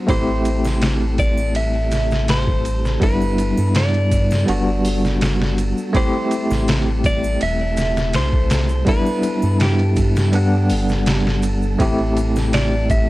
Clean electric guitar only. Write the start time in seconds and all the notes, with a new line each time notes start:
0.10 C5
1.19 D5
1.56 E5
2.30 C5
3.03 B4
3.77 D5
5.97 C5
7.06 D5
7.43 E5
8.16 C5
8.89 B4
9.62 G4
12.54 D5
12.91 E5